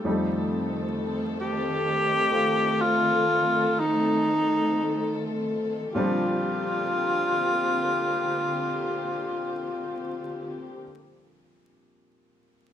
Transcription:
Already playing: upright piano A4
0.04 upright piano F2 F3 G3 A3 D#4, string section D#3 A3 C4 F4 A4
1.41 tenor saxophone G4
2.31 upright piano A3 C4 F4
2.81 tenor saxophone F4
3.80 tenor saxophone D#4
5.95 upright piano A#2 F3 G3 C4 D4, string section D3 A#3 C4 F4 G4, tenor saxophone F4

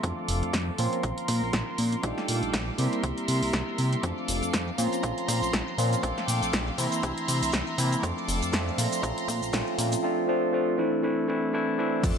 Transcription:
0.03 analog synth bass F2, tine electric piano F3 A3 C4 D4 F4, violin section A4 F5 D6, kick, closed hi-hat
0.18 maracas
0.28 analog synth bass F1, open hi-hat
0.43 analog synth bass F2, closed hi-hat, maracas
0.53 analog synth bass F2, kick, snare, closed hi-hat
0.68 maracas
0.78 analog synth bass A#2, tine electric piano F3 A#3 C4 C#4 F4, violin section A#4 C6, open hi-hat
0.93 closed hi-hat, maracas
1.03 analog synth bass A#1, kick, closed hi-hat
1.17 closed hi-hat, maracas
1.28 analog synth bass A#2, kick, open hi-hat
1.43 analog synth bass A#1, maracas
1.53 analog synth bass A#1, kick, snare, closed hi-hat
1.68 maracas
1.78 analog synth bass A#2, open hi-hat
1.92 closed hi-hat, maracas
2.03 analog synth bass A#1, tine electric piano G3 A3 D4 D#4 F4, violin section A4 F5 G5 D6, kick, closed hi-hat, maracas
2.18 snare, maracas
2.28 analog synth bass A#2, open hi-hat
2.43 analog synth bass A#1, closed hi-hat, maracas
2.54 analog synth bass A#1, kick, snare, closed hi-hat
2.68 maracas
2.78 analog synth bass C3, tine electric piano G3 A#3 C4 E4 G4, violin section A#4 E5 C6, open hi-hat
2.93 closed hi-hat, maracas
3.03 analog synth bass C2, kick, closed hi-hat, maracas
3.17 closed hi-hat, maracas
3.28 analog synth bass C3, open hi-hat
3.43 analog synth bass C2, open hi-hat, maracas
3.53 analog synth bass C2, kick, snare, closed hi-hat
3.68 maracas
3.78 analog synth bass C3, open hi-hat
3.92 closed hi-hat, maracas
4.03 analog synth bass F2, tine electric piano F3 A3 C4 D4 F4, violin section A4 F5 D6, kick, closed hi-hat, maracas, shaker
4.18 maracas
4.28 analog synth bass F1, open hi-hat, shaker
4.42 analog synth bass F2, closed hi-hat, maracas, shaker
4.53 analog synth bass F2, kick, snare, closed hi-hat, shaker
4.68 maracas
4.78 analog synth bass A#2, tine electric piano F3 A#3 C4 C#4 F4, violin section A#5 C6, open hi-hat, shaker
4.92 closed hi-hat, maracas, shaker
5.03 analog synth bass A#1, tine electric piano F3 A3 C4 C#4 F4, kick, closed hi-hat, maracas, shaker
5.18 closed hi-hat, maracas
5.28 analog synth bass A#2, kick, open hi-hat, shaker
5.42 analog synth bass A#1, maracas, shaker
5.53 analog synth bass A#1, kick, snare, closed hi-hat, maracas, shaker
5.68 maracas
5.78 analog synth bass A#2, tine electric piano F3 A#3 C4 C#4 F4, open hi-hat, shaker
5.93 closed hi-hat, maracas, shaker
6.03 analog synth bass A#1, tine electric piano F3 A3 C4 D4 F4, violin section A4 F5 G5 D6, kick, closed hi-hat, maracas, shaker
6.18 snare, maracas
6.28 analog synth bass A#2, open hi-hat, shaker
6.42 analog synth bass A#1, closed hi-hat, maracas, shaker
6.53 analog synth bass A#1, kick, snare, closed hi-hat, maracas, shaker
6.67 maracas
6.78 analog synth bass C3, tine electric piano E3 A#3 C4 E4, violin section E5 A#5 C6, open hi-hat, shaker
6.92 closed hi-hat, maracas, shaker
7.03 analog synth bass C2, tine electric piano E3 A3 C4 D4 E4, kick, closed hi-hat, maracas, shaker
7.17 closed hi-hat, maracas
7.28 analog synth bass C3, open hi-hat, shaker
7.42 analog synth bass C2, open hi-hat, maracas, shaker
7.52 analog synth bass C2, kick, snare, closed hi-hat, maracas, shaker
7.67 maracas
7.77 analog synth bass C3, tine electric piano E3 A#3 C4 E4, open hi-hat, shaker
7.92 closed hi-hat, maracas, shaker
8.02 analog synth bass F2, tine electric piano F3 A3 C4 D4, violin section A4 F5 D6, kick, closed hi-hat, maracas, shaker
8.18 maracas
8.28 analog synth bass F1, open hi-hat, shaker
8.42 analog synth bass F2, closed hi-hat, maracas, shaker
8.52 analog synth bass F2, tine electric piano F3 A3 C4 D4 F4, kick, snare, closed hi-hat, maracas, shaker
8.68 maracas
8.78 analog synth bass A#2, violin section A#5 C6, open hi-hat, shaker
8.92 closed hi-hat, maracas, shaker
9.02 analog synth bass A#1, tine electric piano F3 A3 C4 C#4 F4, kick, closed hi-hat, maracas, shaker
9.18 closed hi-hat, maracas
9.28 analog synth bass A#2, kick, open hi-hat, shaker
9.42 analog synth bass A#1, maracas, shaker
9.52 analog synth bass A#1, tine electric piano F3 A3 C4 C#4 F4, kick, snare, closed hi-hat, maracas, shaker
9.67 maracas
9.78 analog synth bass A#2, open hi-hat, shaker
9.92 closed hi-hat, maracas, shaker
10.03 tine electric piano F3 A3 C4 D4 F4
10.28 tine electric piano F3 A3 C4 D4 F4
10.53 tine electric piano F3 A3 C4 D4 F4
10.78 tine electric piano E3 A3 C4 D4 E4
11.03 tine electric piano E3 A3 C4 D4 E4
11.28 tine electric piano E3 A3 C4 D4 E4
11.53 tine electric piano E3 A3 C4 D4 E4
11.78 tine electric piano E3 A3 C4 D4 E4
12.03 analog synth bass F2, tine electric piano F3, violin section A4 F5 D6, kick, closed hi-hat, crash, maracas, shaker

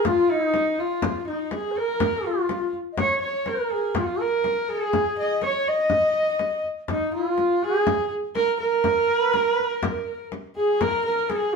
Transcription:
0.05 xiao F4, horsehead fiddle F4, frame drum
0.30 xiao D#4, horsehead fiddle D#4
0.54 frame drum
0.78 xiao F4, horsehead fiddle F4, frame drum
1.02 frame drum
1.27 horsehead fiddle D#4, xiao D#4, frame drum
1.51 xiao G#4, horsehead fiddle G#4, frame drum
1.71 xiao C#5
1.76 horsehead fiddle A#4, xiao A#4, frame drum
2.00 frame drum
2.25 xiao F4, horsehead fiddle F4
2.49 frame drum
2.73 frame drum
2.92 xiao D#5
2.97 xiao C#5, horsehead fiddle C#5, frame drum
3.22 horsehead fiddle C#5, frame drum
3.46 xiao A#4, horsehead fiddle A#4, frame drum
3.70 horsehead fiddle G#4, frame drum
3.95 horsehead fiddle F4, xiao F4, frame drum
4.20 xiao A#4, horsehead fiddle A#4
4.44 frame drum
4.68 xiao G#4, horsehead fiddle G#4, frame drum
4.93 frame drum
5.18 horsehead fiddle D#5, frame drum
5.42 xiao C#5, horsehead fiddle C#5, frame drum
5.66 horsehead fiddle D#5, xiao D#5, frame drum
5.90 frame drum
6.39 frame drum
6.64 frame drum
6.88 xiao D#4, horsehead fiddle D#4, frame drum
7.13 xiao F4, horsehead fiddle F4, frame drum
7.38 frame drum
7.62 xiao G#4, horsehead fiddle G#4, frame drum
7.87 frame drum
8.35 horsehead fiddle A#4, xiao A#4, frame drum
8.60 horsehead fiddle A#4, xiao A#4, frame drum
8.84 frame drum
9.08 frame drum
9.19 horsehead fiddle B4
9.34 horsehead fiddle A#4, frame drum
9.53 horsehead fiddle B4
9.59 frame drum
9.69 horsehead fiddle A#4
9.83 frame drum
10.32 frame drum
10.56 horsehead fiddle G#4, xiao G#4, frame drum
10.80 xiao A#4, horsehead fiddle A#4, frame drum
11.05 xiao A#4, horsehead fiddle A#4
11.17 frame drum
11.29 horsehead fiddle G#4, xiao G#4, frame drum

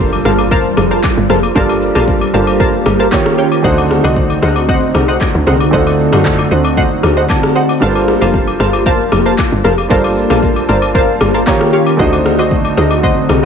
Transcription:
Already playing: log drum bass F1, grand piano G3 D4 F4 A4 A#4 C5, analog synth pad G3 A#3 F4, synth stab A#4 C5 F5 A5, impact
0.13 high agogo, shaker
0.25 log drum bass G1, synth stab A#4 C5 F5 A5, cross-stick, shaker
0.39 high agogo, shaker
0.51 synth stab A#4 C5 F5 A5, kick, shaker
0.65 shaker
0.77 log drum bass F1, cross-stick, high agogo, shaker
0.91 synth stab A#4 C5 F5 A5, shaker
1.04 kick, clap, high agogo, shaker
1.17 log drum bass G1, shaker
1.29 log drum bass F1, synth stab A#4 C5 F5 A5, cross-stick, shaker
1.43 high agogo, shaker
1.55 log drum bass G1, grand piano G3 D4 F4 A4 A#4 D5, analog synth pad G4, synth stab A#4 C5 F5 A5, kick, shaker
1.69 high agogo, shaker
1.82 shaker
1.95 log drum bass A#1, synth stab A#4 C5 F5 A5, cross-stick, high agogo, shaker
2.08 kick, shaker
2.21 high agogo, shaker
2.33 log drum bass G1, grand piano G3 D4 F4 A4 A#4 C5, synth stab A#4 C5 F5 A5, shaker
2.47 high agogo, shaker
2.60 synth stab A#4 C5 F5 A5, kick, shaker
2.74 shaker
2.86 log drum bass G1, cross-stick, high agogo, shaker
2.99 synth stab A#4 C5 F5 A5, shaker
3.11 grand piano D#3 A#3 F4 G4 C#5, analog synth pad D#3 C#4 F4, kick, clap, high agogo, shaker
3.26 cross-stick, shaker
3.38 synth stab C#5 F5 G5, shaker
3.52 high agogo, shaker
3.62 log drum bass D2, grand piano D3 A3 D#4 F#4, analog synth pad D3 C4 D#4 F#4, synth stab C5 D#5 F#5, kick, shaker
3.67 grand piano C5
3.78 high agogo, shaker
3.90 cross-stick, shaker
4.04 log drum bass C2, synth stab C5 D#5 F#5, high agogo, shaker
4.16 kick, shaker
4.30 high agogo, shaker
4.42 log drum bass D2, synth stab C5 D#5 F#5, cross-stick, shaker
4.56 high agogo, shaker
4.69 synth stab C5 D#5 F#5, kick, shaker
4.82 shaker
4.94 log drum bass C2, cross-stick, high agogo, shaker
5.08 synth stab C5 D#5 F#5, shaker
5.21 kick, clap, high agogo, shaker
5.35 log drum bass D2, shaker
5.47 log drum bass C2, synth stab C5 D#5 F#5, cross-stick, shaker
5.60 high agogo, shaker
5.71 log drum bass D2, grand piano D3 A3 D#4 F4, synth stab C5 D#5 F#5, kick, shaker
5.75 grand piano A4
5.80 grand piano F#4
5.87 high agogo, shaker
5.99 shaker
6.12 log drum bass F#2, synth stab C5 D#5 F#5, cross-stick, high agogo, shaker
6.25 kick, clap, shaker
6.39 high agogo, shaker
6.51 log drum bass D2, synth stab C5 D#5 F#5, shaker
6.65 high agogo, shaker
6.77 synth stab C5 D#5 F#5, kick, shaker
6.91 shaker
7.03 log drum bass D2, cross-stick, high agogo, shaker
7.17 synth stab C5 D#5 F#5, shaker
7.30 grand piano A5, kick, clap, high agogo, shaker
7.43 cross-stick, shaker
7.56 synth stab C5 D#5 F#5, grand piano F#5, shaker
7.69 high agogo, shaker
7.80 log drum bass G1, grand piano G3 D4 F4 A4 A#4, analog synth pad A#3 F4 G4, synth stab A#4 C5 F5 A5, shaker
7.84 grand piano B4
7.90 grand piano C5
7.96 high agogo, shaker
8.08 cross-stick, shaker
8.21 log drum bass F1, synth stab A#4 C5 F5 A5, high agogo, shaker
8.34 kick, shaker
8.48 high agogo, shaker
8.60 log drum bass G1, synth stab A#4 C5 F5 A5, cross-stick, shaker
8.73 high agogo, shaker
8.86 synth stab A#4 C5 F5 A5, kick, shaker
9.00 shaker
9.12 log drum bass F1, cross-stick, high agogo, shaker
9.26 synth stab A#4 C5 F5 A5, shaker
9.38 kick, clap, high agogo, shaker
9.52 log drum bass G1, shaker
9.64 log drum bass F1, synth stab A#4 C5 F5 A5, cross-stick, shaker
9.78 high agogo, shaker
9.89 log drum bass G1, grand piano G3 D4 F4 A4 A#4, synth stab A#4 C5 F5 A5, analog synth pad A5, kick, shaker
9.93 grand piano C5
10.04 high agogo, shaker
10.17 shaker
10.30 log drum bass A#1, synth stab A#4 C5 F5 A5, cross-stick, high agogo, shaker
10.43 kick, shaker
10.56 high agogo, shaker
10.69 log drum bass G1, synth stab A#4 C5 F5 A5, grand piano D5, shaker
10.82 high agogo, shaker
10.95 synth stab A#4 C5 F5 A5, grand piano F5, kick, shaker
11.08 shaker
11.21 log drum bass G1, cross-stick, high agogo, shaker
11.34 synth stab A#4 C5 F5 A5, shaker
11.46 grand piano D#3 A#3 F4 G4 C#5 A#5, analog synth pad D#3 C#4 G4, kick, clap, high agogo, shaker
11.61 cross-stick, shaker
11.73 synth stab G4 C#5 F5, shaker
11.87 high agogo, shaker
11.97 log drum bass D2, grand piano D3 A3 D#4 F#4, analog synth pad D3 C4 D#4 F#4, synth stab F#4 C5 D#5, kick, shaker
12.01 grand piano C5
12.13 high agogo, shaker
12.25 cross-stick, shaker
12.39 log drum bass C2, synth stab F#4 C5 D#5, high agogo, shaker
12.51 kick, shaker
12.65 high agogo, shaker
12.77 log drum bass D2, synth stab F#4 C5 D#5, cross-stick, shaker
12.91 high agogo, shaker
13.03 synth stab F#4 C5 D#5, kick, shaker
13.17 shaker
13.29 log drum bass C2, cross-stick, high agogo, shaker

